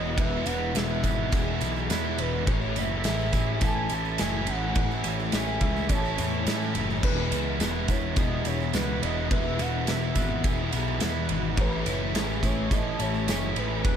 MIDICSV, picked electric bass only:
0, 0, Header, 1, 2, 480
1, 0, Start_track
1, 0, Tempo, 569801
1, 154, Time_signature, 4, 2, 24, 8
1, 11764, End_track
2, 0, Start_track
2, 0, Title_t, "Picked electric bass"
2, 0, Program_c, 0, 34
2, 0, Note_on_c, 0, 28, 92
2, 141, Note_off_c, 0, 28, 0
2, 150, Note_on_c, 0, 28, 110
2, 382, Note_off_c, 0, 28, 0
2, 391, Note_on_c, 0, 28, 100
2, 623, Note_off_c, 0, 28, 0
2, 633, Note_on_c, 0, 28, 105
2, 865, Note_off_c, 0, 28, 0
2, 876, Note_on_c, 0, 32, 101
2, 1107, Note_off_c, 0, 32, 0
2, 1117, Note_on_c, 0, 28, 95
2, 1348, Note_off_c, 0, 28, 0
2, 1357, Note_on_c, 0, 35, 87
2, 1588, Note_off_c, 0, 35, 0
2, 1602, Note_on_c, 0, 40, 98
2, 1831, Note_off_c, 0, 40, 0
2, 1847, Note_on_c, 0, 28, 88
2, 2074, Note_off_c, 0, 28, 0
2, 2083, Note_on_c, 0, 33, 97
2, 2312, Note_off_c, 0, 33, 0
2, 2331, Note_on_c, 0, 30, 96
2, 2557, Note_off_c, 0, 30, 0
2, 2569, Note_on_c, 0, 33, 102
2, 2796, Note_off_c, 0, 33, 0
2, 2807, Note_on_c, 0, 33, 98
2, 3035, Note_off_c, 0, 33, 0
2, 3048, Note_on_c, 0, 33, 88
2, 3276, Note_off_c, 0, 33, 0
2, 3290, Note_on_c, 0, 33, 97
2, 3517, Note_off_c, 0, 33, 0
2, 3533, Note_on_c, 0, 30, 87
2, 3759, Note_off_c, 0, 30, 0
2, 3775, Note_on_c, 0, 33, 90
2, 4000, Note_off_c, 0, 33, 0
2, 4011, Note_on_c, 0, 33, 103
2, 4238, Note_off_c, 0, 33, 0
2, 4249, Note_on_c, 0, 33, 88
2, 4477, Note_off_c, 0, 33, 0
2, 4489, Note_on_c, 0, 33, 102
2, 4717, Note_off_c, 0, 33, 0
2, 4728, Note_on_c, 0, 37, 91
2, 4956, Note_off_c, 0, 37, 0
2, 4972, Note_on_c, 0, 33, 88
2, 5198, Note_off_c, 0, 33, 0
2, 5210, Note_on_c, 0, 40, 97
2, 5437, Note_off_c, 0, 40, 0
2, 5448, Note_on_c, 0, 45, 87
2, 5676, Note_off_c, 0, 45, 0
2, 5685, Note_on_c, 0, 30, 92
2, 5915, Note_off_c, 0, 30, 0
2, 5925, Note_on_c, 0, 28, 103
2, 6154, Note_off_c, 0, 28, 0
2, 6162, Note_on_c, 0, 37, 89
2, 6393, Note_off_c, 0, 37, 0
2, 6407, Note_on_c, 0, 28, 92
2, 6635, Note_off_c, 0, 28, 0
2, 6642, Note_on_c, 0, 28, 97
2, 6872, Note_off_c, 0, 28, 0
2, 6881, Note_on_c, 0, 28, 93
2, 7111, Note_off_c, 0, 28, 0
2, 7116, Note_on_c, 0, 28, 94
2, 7349, Note_off_c, 0, 28, 0
2, 7360, Note_on_c, 0, 37, 85
2, 7590, Note_off_c, 0, 37, 0
2, 7601, Note_on_c, 0, 28, 98
2, 7830, Note_off_c, 0, 28, 0
2, 7844, Note_on_c, 0, 28, 102
2, 8072, Note_off_c, 0, 28, 0
2, 8083, Note_on_c, 0, 28, 97
2, 8311, Note_off_c, 0, 28, 0
2, 8324, Note_on_c, 0, 28, 99
2, 8551, Note_off_c, 0, 28, 0
2, 8560, Note_on_c, 0, 32, 110
2, 8788, Note_off_c, 0, 32, 0
2, 8798, Note_on_c, 0, 28, 84
2, 9027, Note_off_c, 0, 28, 0
2, 9046, Note_on_c, 0, 35, 98
2, 9271, Note_off_c, 0, 35, 0
2, 9275, Note_on_c, 0, 40, 95
2, 9505, Note_off_c, 0, 40, 0
2, 9514, Note_on_c, 0, 32, 92
2, 9744, Note_off_c, 0, 32, 0
2, 9752, Note_on_c, 0, 33, 104
2, 9983, Note_off_c, 0, 33, 0
2, 9993, Note_on_c, 0, 30, 86
2, 10222, Note_off_c, 0, 30, 0
2, 10229, Note_on_c, 0, 33, 91
2, 10460, Note_off_c, 0, 33, 0
2, 10471, Note_on_c, 0, 33, 109
2, 10701, Note_off_c, 0, 33, 0
2, 10709, Note_on_c, 0, 33, 83
2, 10940, Note_off_c, 0, 33, 0
2, 10952, Note_on_c, 0, 33, 95
2, 11181, Note_off_c, 0, 33, 0
2, 11187, Note_on_c, 0, 30, 89
2, 11418, Note_off_c, 0, 30, 0
2, 11432, Note_on_c, 0, 33, 94
2, 11660, Note_off_c, 0, 33, 0
2, 11665, Note_on_c, 0, 28, 106
2, 11764, Note_off_c, 0, 28, 0
2, 11764, End_track
0, 0, End_of_file